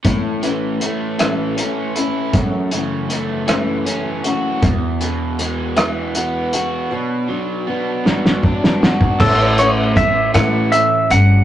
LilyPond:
<<
  \new Staff \with { instrumentName = "Electric slide guitar" } { \time 6/8 \key a \major \tempo 4. = 53 r2. | r2. | r2. | r2. |
a'8 cis''8 e''8 fis''8 e''8 fis''8 | }
  \new Staff \with { instrumentName = "Steel-string acoustic guitar" } { \time 6/8 \key a \major <a, e a cis' e' a'>8 <a cis' e' a'>8 <a cis' e' a'>8 <a, e a cis' e' a'>8 <a cis' e' a'>8 <a cis' e' a'>8 | <fis, cis e a cis' a'>8 <e a cis' a'>8 <e a cis' a'>8 <fis, cis e a cis' a'>8 <e a cis' a'>8 <e a cis' a'>8 | <e b fis' gis'>8 <b fis' gis'>8 <e b fis' gis'>8 <e b fis' gis'>8 <e b fis' gis'>8 <b fis' gis'>8 | <b, fis b d' fis'>8 <b d' fis'>8 <fis b d' fis'>8 <b, fis b d' fis'>8 <fis b d' fis'>8 <d' fis'>8 |
<a, e a cis' e' a'>8 <a cis' e' a'>8 <a cis' e' a'>8 <a, e a cis' e' a'>8 <a cis' e' a'>8 <a cis' e' a'>8 | }
  \new Staff \with { instrumentName = "Overdriven electric guitar" } { \clef bass \time 6/8 \key a \major a,8 e8 a8 e8 cis'8 e'8 | fis,8 cis8 a8 e8 cis'8 fis'8 | e,8 b,8 gis8 e8 b8 fis'8 | b,8 fis8 b8 fis8 d'8 fis'8 |
<a, e a>4 <a, e>8 <a, e a>8 <a, e>8 r8 | }
  \new Staff \with { instrumentName = "Upright bass" } { \clef bass \time 6/8 \key a \major r2. | r2. | e,2. | r2. |
a,,4. a,4 g,,8 | }
  \new DrumStaff \with { instrumentName = "Drums" } \drummode { \time 6/8 <hh bd>8 hh8 hh8 <hh ss>8 hh8 hh8 | <hh bd>8 hh8 hh8 <hh ss>8 hh8 hh8 | <hh bd>8 hh8 hh8 <hh ss>8 hh8 hh8 | r4. sn16 sn16 bd16 sn16 sn16 bd16 |
<cymc bd>8 hh8 <hh bd>8 <hh ss>8 hh8 hh8 | }
>>